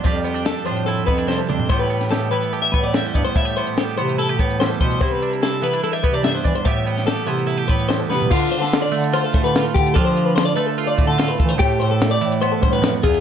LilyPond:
<<
  \new Staff \with { instrumentName = "Clean electric guitar" } { \time 4/4 \key a \minor \tempo 4 = 146 d''8 c''8 a'8 c''8 a'8 b'8 c''16 a'16 c''8 | c''16 b'8 r16 a'8 b'8 a'16 e''16 b'16 d''16 e''16 c''16 d''16 c''16 | e''8 c''8 a'8 c''8 a'8 b'8 c''16 a'16 c''8 | c''16 b'8 r16 a'8 b'8 a'16 e''16 b'16 d''16 e''16 c''16 d''16 c''16 |
e''8 c''8 a'8 c''8 a'8 b'8 c''16 a'16 b'8 | f'8 c''16 a'8 d''8 r16 c''16 a'16 c''16 b'8 r16 g'8 | a'16 c''8 b'16 c''16 d''16 b'16 a'8 d''8 a'8 b'16 a'16 c''16 | g'8 c''16 a'8 d''8 r16 c''16 a'16 c''16 b'8 r16 gis'8 | }
  \new Staff \with { instrumentName = "Clean electric guitar" } { \time 4/4 \key a \minor << { <f g d' g'>8 b16 d'16 g'8 d'8 e'8 b16 d'16 g8 d'8 | <e g b g'>8 b8 g'8 b8 g'8 b8 g8 b8 | e'16 g'16 b8 g'8 b8 e'16 g'16 b8 g8 b8 | e'8 d'8 e'8 b16 d'16 e'16 g'16 b16 d'16 b8 d'8 |
<e g b g'>8 b8 g'8 b8 e'16 g'16 b8 g8 b8 | f'2 f'4 f'4 | f'2 f'4 f'4 | g'2 b4. f'8 | } \\ { f,4. f4. c4 | a,4. e4. e,4 | a,4. e4. e,4 | c4. e4. g,4 |
a,4. e4. e,4 | d4. a4 a,4. | d4. a4 a,4. | a,4. e4 g,8 f,8 e,8 | } >> }
  \new Staff \with { instrumentName = "Bass clarinet" } { \clef bass \time 4/4 \key a \minor f,4. a,4 f,4 f,8 | a,2~ a,8 a,4 g,16 r16 | a,4 r8 c4 a,4 b,8 | c2~ c8 c4 e16 r16 |
a,4. c4 a,4 c8 | d8 d4 d4 d4 d8 | f2 r8 d4 e8 | a,8 a,4 a,4 a,4 e,8 | }
  \new DrumStaff \with { instrumentName = "Drums" } \drummode { \time 4/4 <hh bd>8 hh16 hh16 <hh sn>8 hh16 hh16 hh8 <hh bd>16 hh16 sn8 toml16 tomfh16 | <hh bd>8 hh16 <hh sn>16 <hh sn>8 hh16 hh16 hh8 <hh bd>8 <hh sn>8 <hh bd>16 hh16 | <hh bd>8 hh16 hh16 <hh sn>8 hh16 hh16 hh8 <hh bd>16 hh16 <hh sn>8 <hh bd>16 hh16 | <hh bd>8 hh16 hh16 <hh sn>8 hh16 hh16 hh8 <hh bd>8 <hh sn>8 <hh bd>16 hh16 |
<hh bd>8 hh16 <hh sn>16 <hh sn>8 hh16 hh16 hh8 <hh bd>16 hh16 <hh sn>8 sn16 tomfh16 | <cymc bd>8 hh16 sn16 <hh sn>8 hh16 hh16 hh8 <hh bd>16 hh16 <hh sn>8 <hh bd>16 hh16 | <hh bd>8 hh8 <hh sn>8 hh8 hh8 <hh bd>8 <hh sn>8 <hh bd>16 hh16 | <hh bd>8 hh8 <hh sn>8 hh16 hh16 hh8 <hh bd>16 hh16 <hh sn>8 <hh bd>16 hh16 | }
>>